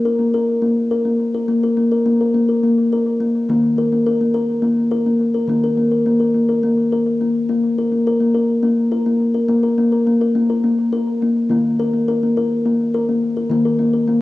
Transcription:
0.05 A#4
0.19 A#3
0.34 A#4
0.62 A#3
0.91 A#4
1.05 A#3
1.35 A#4
1.48 A#3
1.63 A#4
1.77 A#3
1.91 A#4
2.06 A#3
2.21 A#4
2.34 A#3
2.49 A#4
2.64 A#3
2.92 A#4
3.20 A#3
3.49 D#3 A#3
3.78 A#4
3.92 A#3
4.06 A#4
4.21 A#3
4.34 A#4
4.62 A#3
4.91 A#4
5.06 A#3
5.34 A#4
5.48 D#3 A#3
5.64 A#4
5.77 A#3
5.91 A#4
6.06 A#3
6.20 A#4
6.34 A#3
6.49 A#4
6.63 A#3
6.92 A#4
7.21 A#3
7.49 A#3
7.78 A#4
7.92 A#3
8.07 A#4
8.20 A#3
8.34 A#4
8.63 A#3
8.92 A#4
9.06 A#3
9.34 A#4
9.48 A#3
9.63 A#4
9.78 A#3
9.92 A#4
10.07 A#3
10.21 A#4
10.35 A#3
10.50 A#4
10.64 A#3
10.93 A#4
11.22 A#3
11.50 D#3 A#3
11.80 A#4
11.93 A#3
12.08 A#4
12.23 A#3
12.37 A#4
12.66 A#3
12.94 A#4
13.09 A#3
13.37 A#4
13.50 D#3 A#3
13.65 A#4
13.79 A#3
13.94 A#4
14.08 A#3

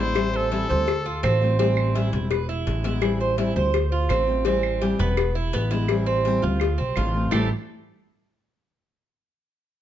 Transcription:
Already playing: A1 E4
0.00 D3 G#3 B3 C5
0.15 E3 G3 C4 E4, cowbell, claves
0.33 A4 C5
0.51 E3 G3 C4 E4, cowbell
0.69 D2 G3 C4 E4 C5
0.88 muted steel-string acoustic guitar stroke, cowbell, claves
1.06 F4
1.23 A1 D3 A3 C4 F4, cowbell, claves
1.41 A3 C4 F4
1.59 E3 G3 C4 E4, cowbell
1.77 claves
1.95 E3 G3 C4 E4, cowbell
2.12 E1 G3 E4, cowbell
2.30 B4, muted steel-string acoustic guitar stroke, cowbell, claves
2.49 E4
2.66 A1 D3 G#3 B3 E4, cowbell
2.84 D3 G#3 B3 E4, cowbell
3.01 E3 G3 C4 E4, cowbell, claves
3.21 C5
3.37 E3 G3 C4 E4, cowbell
3.55 D2 G3 C4 E4 C5
3.73 muted steel-string acoustic guitar stroke, cowbell, claves
3.92 F4
4.09 A1 D3 A3 C4 F4, cowbell, claves
4.27 A3 C4 F4
4.45 E3 G3 C4 E4, cowbell
4.63 claves
4.81 E3 G3 C4 E4 G4, cowbell
4.99 E1 G3 B3 C4 E4, cowbell
5.17 muted steel-string acoustic guitar stroke, cowbell, claves
5.35 E4
5.53 A1 D3 G#3 B3 E4, cowbell
5.71 D3 G#3 B3 E4, cowbell
5.88 E3 G3 C4 E4, cowbell, claves
6.06 C4
6.25 E3 G3 C4 E4, cowbell
6.42 D2 G3 E4 F4
6.60 muted steel-string acoustic guitar stroke, cowbell, claves
6.78 B1 C4
6.96 A1 D3 A3 C4 F4, cowbell, claves
7.14 A3 C4 F4
7.31 A1 A2 E3 G3 A3 C4 E4 G4, low bongo, claves

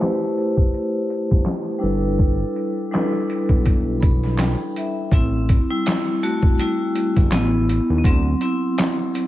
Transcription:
Already playing: B4 C5
0.00 A3 E4 G4 B4 C5, snare, clap, closed hi-hat
0.38 closed hi-hat
0.57 kick
0.74 closed hi-hat
1.10 closed hi-hat
1.31 G1, kick, closed hi-hat
1.46 snare, clap, closed hi-hat
1.79 G3 D4 E4 A4 B4
1.83 G1, closed hi-hat
2.19 kick, closed hi-hat
2.56 closed hi-hat
2.91 G3 D4 E4 A4 B4, snare, clap, closed hi-hat
3.30 closed hi-hat
3.49 B1, kick, closed hi-hat
3.66 kick, closed hi-hat
4.00 B5, kick, closed hi-hat
4.23 snare
4.38 G5, snare, clap, closed hi-hat
4.76 E5, closed hi-hat
5.11 A1 C4 E4, kick, closed hi-hat, shaker
5.49 kick, closed hi-hat, shaker
5.70 G3 E4
5.86 snare, clap, closed hi-hat, shaker
6.21 A3 F#4, closed hi-hat, shaker
6.41 kick, shaker
6.57 G3 E4, closed hi-hat, shaker
6.95 closed hi-hat, shaker
7.15 G1, kick, closed hi-hat, shaker
7.31 A1 B3 E4, snare, clap, closed hi-hat, shaker
7.69 closed hi-hat, shaker
7.90 D#2
7.99 B3
8.04 D2 F#3 C4, kick, closed hi-hat, shaker
8.41 C4 E4, closed hi-hat, shaker
8.78 snare, clap, closed hi-hat, shaker
9.14 closed hi-hat, shaker

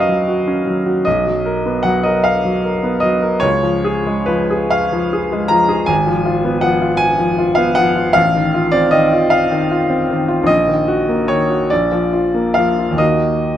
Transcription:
Already playing: D#2 F#3 C#4 F#4 A#4 B4 F5
0.00 D#5
0.09 F#3
0.28 F#4
0.47 C#4
0.67 F#3
0.86 F#4
1.05 B1 D#5
1.27 F#3
1.46 A#4
1.66 B3
1.83 F#3 F#5
2.03 A#4 D#5
2.24 F5
2.45 F#3
2.64 A#4
2.83 B3
3.00 F#3 D#5
3.22 A#4
3.40 C#2 C#5
3.63 F3
3.84 G#4
4.06 G#3
4.26 F3 B4
4.50 G#4
4.70 F5
4.92 F3
5.13 G#4
5.32 G#3
5.48 F3 A#5
5.69 G#4
5.86 G#1 G#5
6.07 F3
6.26 F4
6.44 B3
6.61 F3 F#5
6.82 F4
6.97 G#5
7.19 F3
7.38 F4
7.55 B3 F5
7.75 F3 F#5
7.96 F4
8.13 A1 F5
8.35 D#3
8.54 F4
8.72 C4 D5
8.91 D#3 D#5
9.12 F4
9.30 F5
9.51 D#3
9.71 F4
9.90 C4
10.10 D#3
10.28 F4
10.43 A#1 D#5
10.67 D#3
10.88 F#4
11.08 A#3
11.28 D#3 C#5
11.50 F#4
11.70 A#1 D5
11.92 F3
12.13 F4
12.34 A#3
12.54 F3 F5
12.79 F4
12.91 D#2
12.96 D#3 A#3 F#4 D#5

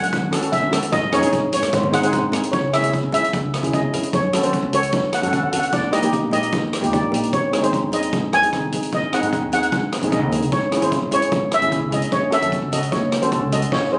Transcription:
Already playing: F#2 F#5
0.02 closed hi-hat, low conga
0.13 kick, closed hi-hat
0.22 high conga
0.31 C#4 F#4 A4, cross-stick, closed hi-hat
0.42 C#4 F#4 A4, closed hi-hat
0.52 E5, kick, closed hi-hat
0.63 high conga
0.71 C#4 F#4 A4, cross-stick, closed hi-hat, low conga
0.82 closed hi-hat, high conga
0.92 G#2 D#5, kick, closed hi-hat
1.12 D#2 C#4 D#4 G#4 C#5, cross-stick, closed hi-hat
1.21 G#2 C#4 D#4 G#4, closed hi-hat, high conga
1.33 kick, closed hi-hat
1.52 C#5, closed hi-hat, low conga
1.63 cross-stick, closed hi-hat, low conga
1.73 G#2 C5, kick, closed hi-hat
1.81 C5, high conga
1.88 C4 C5
1.93 D#4 G#4 C5 F#5, cross-stick, closed hi-hat, high conga
2.02 C4 D#4 G#4 C5, closed hi-hat
2.10 C5, kick, closed hi-hat, low conga
2.18 C5
2.32 C4 D#4 G#4, cross-stick, closed hi-hat, low conga
2.43 closed hi-hat
2.52 C#2 C#5, kick, closed hi-hat
2.73 C#4 E4 G#4 E5, cross-stick, closed hi-hat
2.82 C#3 C#4 E4 G#4, closed hi-hat, high conga
2.93 kick, closed hi-hat
3.03 G#1
3.12 C#4 E4 G#4 E5, closed hi-hat, low conga
3.24 closed hi-hat
3.33 C#2, kick, closed hi-hat
3.54 cross-stick, closed hi-hat
3.63 C#2 C#4 E4 G#4, closed hi-hat, high conga, low conga
3.73 C#4 E4 G#4 D#5, kick, closed hi-hat, high conga
3.82 G#1
3.93 C#4 E4 G#4, closed hi-hat, low conga
4.03 closed hi-hat
4.13 F#2 C#5, kick, closed hi-hat
4.33 C#4 F#4 A4, cross-stick, closed hi-hat
4.42 F#3 C#4 F#4 A4 C5, closed hi-hat, high conga
4.53 kick, closed hi-hat
4.62 C#2
4.73 C#4 F#4 A4 C#5, closed hi-hat, low conga
4.83 closed hi-hat
4.92 F#2, kick, closed hi-hat
5.13 F#5, cross-stick, closed hi-hat
5.22 F#2 C#4 F#4 A4 F#5, closed hi-hat, high conga, low conga
5.28 C#4 F#5
5.32 F#4 A4 F#5, kick, closed hi-hat, high conga
5.43 C#2 F#5
5.51 C#4 F#4 A4 F#5, closed hi-hat, low conga
5.59 F#5, closed hi-hat
5.72 D#2 D5, kick, closed hi-hat
5.91 A#3 D#4 G4 D#5, cross-stick, closed hi-hat
6.02 D#3 A#3 D#4 G4, closed hi-hat, high conga
6.13 kick, closed hi-hat
6.23 A#1
6.31 A#3 D#4 G4 D#5, closed hi-hat, low conga
6.43 closed hi-hat
6.52 D#2, kick, closed hi-hat
6.73 cross-stick, closed hi-hat
6.81 D#2 A#3 D#4 G4, closed hi-hat, high conga, low conga
6.92 A#3 D#4 G4 D5, kick, closed hi-hat, high conga
7.03 A#1
7.11 A#3 D#4 G4, closed hi-hat, low conga
7.23 closed hi-hat
7.33 G#1 C#5, kick, closed hi-hat
7.51 C4 D#4 G#4, cross-stick, closed hi-hat
7.61 G#2 C4 D#4 G#4 C5, closed hi-hat, high conga
7.73 kick, closed hi-hat
7.83 D#2
7.92 C4 D#4 G#4 D#5, closed hi-hat, low conga
8.03 closed hi-hat
8.13 G#1, kick, closed hi-hat
8.33 D#2 G#5, cross-stick, closed hi-hat
8.42 C4 D#4 G#4, closed hi-hat, high conga, low conga
8.52 C2 C4 D#4 G#4, kick, cross-stick, closed hi-hat, high conga
8.62 high conga
8.72 G#1 C4 D#4 G#4, closed hi-hat, low conga
8.83 closed hi-hat
8.92 G#1 D#5, kick, closed hi-hat
9.13 C4 D#4 G#4 F#5, cross-stick, closed hi-hat
9.22 G#2 C4 D#4 G#4, closed hi-hat
9.33 kick, closed hi-hat
9.42 D#2
9.52 C4 D#4 G#4 F#5, closed hi-hat, low conga
9.63 closed hi-hat
9.72 G#1, kick, closed hi-hat
9.92 cross-stick, closed hi-hat
10.01 G#1 C4 D#4 G#4, closed hi-hat, high conga, low conga
10.12 C4 D#4 G#4 D#5, kick, closed hi-hat, high conga
10.22 D#2
10.32 C4 D#4 G#4, closed hi-hat, low conga
10.42 closed hi-hat
10.52 G#1 C#5, kick, closed hi-hat
10.71 C#4 E4 G#4, cross-stick, closed hi-hat
10.81 G#2 C#4 E4 G#4 C5, closed hi-hat, high conga
10.92 kick, closed hi-hat
11.02 G#1
11.11 C#4 E4 G#4 C#5, closed hi-hat, low conga
11.22 closed hi-hat
11.32 G#1, kick, closed hi-hat
11.52 E5, cross-stick, closed hi-hat
11.61 G#1 C#4 E4 G#4, closed hi-hat, high conga, low conga
11.71 C#4 E4 G#4, kick, closed hi-hat, high conga
11.82 C#2
11.90 C#4 E4 G#4 D#5, closed hi-hat, low conga
12.02 closed hi-hat
12.12 F#1 C#5, kick, closed hi-hat
12.31 C#4 F#4 A4 E5, cross-stick, closed hi-hat
12.41 F#2 C#4 F#4 A4, closed hi-hat, high conga
12.52 kick, closed hi-hat
12.62 C#2
12.72 C#4 F#4 A4 D#5, closed hi-hat, low conga
12.83 closed hi-hat
12.92 F#1 C#5, kick, closed hi-hat
13.12 cross-stick, closed hi-hat
13.22 F#1 C#4 F#4 A4 C5, closed hi-hat, high conga, low conga
13.32 C#4 F#4 A4, kick, closed hi-hat, high conga
13.41 C#2
13.52 C#4 F#4 A4 D#5, closed hi-hat, low conga
13.62 closed hi-hat
13.72 G#1 C#5, kick, snare
13.92 C4 D#4 G#4 C5

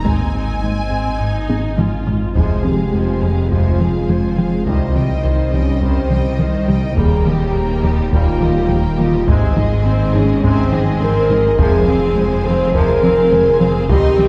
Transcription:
0.05 G#1 G#2 G#3 C4 D#4 D#5 G#5, taiko
0.34 G#1 G#2 C4 D#4 G#4
0.62 G#1 G#2 G#3 C4 D#4
0.91 G#1 G#2 G#3
1.20 G#1 G#2 D#4
1.49 G#1 G#2 G#4, taiko high
1.77 G#1 G#2 G#3 F4, taiko mid
2.06 G#1 G#2 G#3 D#4, taiko low
2.35 F1 F2 C3 F3 G#3 C4 F4 G#4 C5 G#5, taiko
2.63 F3 G#3 C4 G4 G#4 F5, taiko mid
2.93 F2 F3 G#3 C5 G#5
3.22 F2 G#3 G#4 F5, taiko mid
3.50 F2 C3 F3 G#3 F4 C5 G#5, taiko
3.80 F3 G#3 C4 G#4 F5, taiko mid
4.09 F2 F3 G#3 C5 G#5, taiko mid
4.38 F3 G#3 C4 F4 G#4 F5, taiko mid
4.66 C2 C3 D#3 G3 D#4 G4 C5 D#5, taiko
4.95 C3 G3 D#5 G5, taiko mid
5.24 C2 D#3 C5 D#5
5.53 C2 G3 C#4 D#5 G5, taiko mid
5.81 C2 C3 D#3 G3 C4 C5 D#5, taiko
6.10 C3 G3 D#5 G5, taiko mid
6.39 C2 D#3 D#4 C5 D#5, taiko mid
6.68 C3 G3 D#4 D#5 G5, taiko mid
6.96 D#1 D#2 A#2 D#3 G3 A#3 G#4 A#4 D#5 G5, taiko
7.26 D#3 G3 A#3 G4 D#5, taiko mid
7.55 D#2 G3 A#3 A#4 G5
7.84 D#2 G3 G4 D#5, taiko mid
8.12 D#2 A#2 D#3 G3 A#3 F4 A#4 G5, taiko
8.41 D#3 G3 A#3 G4 D#5, taiko mid
8.70 D#2 G3 A#3 A#4 G5, taiko mid
8.99 D#3 G3 A#3 F4 G4 D#5, taiko mid
9.27 G#1 G#2 C3 G#3 C4 D#4 C5 G#5, taiko
9.57 G#3 D#4 G#4 D#5, taiko mid
9.85 G#2 C4 C5 G#5
10.14 G#2 G#3 C#4 G#4 D#5, taiko mid
10.43 G#2 C3 G#3 C4 C5 G#5, taiko
10.72 G#3 D#4 G#4 D#5, taiko mid
11.01 G#2 C4 A#4 C5 G#5, taiko mid
11.29 G#3 D#4 G#4 D#5, taiko mid
11.58 F1 F2 C3 F3 G#3 G#4 C5 F5 G#5, taiko
11.87 F3 C4 G#4 F5, taiko mid
12.16 F2 G#3 C5 G#5
12.45 F2 C4 G#4 C5 F5, taiko mid
12.73 F2 C3 F3 G#3 A#4 C5 G#5, taiko
13.02 F3 C4 G#4 F5, taiko mid
13.31 F2 G#3 C5 G#5, taiko mid
13.60 F3 C4 G#4 F5, taiko mid
13.89 C2 C3 D#3 G3 C4 D#4 G4 C5 D#5 C6, taiko
14.18 C3 G3 C4 C5 G5, taiko mid

